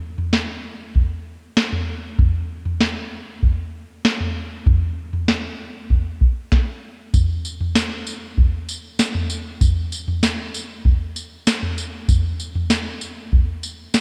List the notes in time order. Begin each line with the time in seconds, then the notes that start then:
0.18 floor tom
0.33 snare
0.95 kick, floor tom
1.57 snare
1.72 floor tom
2.19 kick, floor tom
2.65 floor tom
2.81 snare
3.43 kick, floor tom
4.05 snare
4.20 floor tom
4.66 kick, floor tom
5.13 floor tom
5.28 snare
5.90 kick, floor tom
6.21 kick
6.52 kick, snare
7.14 kick, floor tom, tambourine
7.45 tambourine
7.61 floor tom
7.75 snare, tambourine
8.07 tambourine
8.37 kick, floor tom
8.69 tambourine
8.99 snare, tambourine
9.15 floor tom
9.30 tambourine
9.61 kick, floor tom, tambourine
9.92 tambourine
10.08 floor tom
10.23 snare, tambourine
10.54 tambourine
10.85 kick, floor tom
11.16 tambourine
11.47 snare, tambourine
11.63 floor tom
11.78 tambourine
12.08 kick, floor tom, tambourine
12.40 tambourine
12.55 floor tom
12.70 snare, tambourine
13.01 tambourine
13.32 kick, floor tom
13.63 tambourine
13.94 snare, tambourine